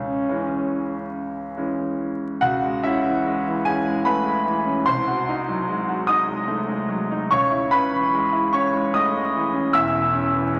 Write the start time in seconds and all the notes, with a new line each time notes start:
Already playing: C#2 C#4
0.29 E3 G#3 C#4
1.57 E3 G#3 C#4
2.41 C#2 F#4 F#5
2.63 G#3
2.83 C#4 E4 E5
3.05 E3
3.25 G#3
3.47 E3
3.65 C#4 G#4 G#5
3.86 G#3
4.05 A3 B4 B5
4.25 G#3
4.46 E3
4.65 C#4
4.86 C2 C5 C6
5.07 F#4
5.28 D#4
5.49 F#3
5.68 G#3
5.88 F#4
6.07 D#4 D#5 D#6
6.28 G#3
6.48 A3
6.68 G#3
6.89 F#3
7.11 D#4
7.31 C#2 C#5 C#6
7.51 E4
7.71 C#4 B4 B5
7.92 E3
8.14 G#3
8.33 E4
8.53 C#4 C#5 C#6
8.75 G#3
8.94 A3 D#5 D#6
9.14 G#3
9.34 E3
9.53 C#4
9.73 E1 E2 E5 E6
9.92 E4
10.14 C#4
10.33 E3
10.52 G#3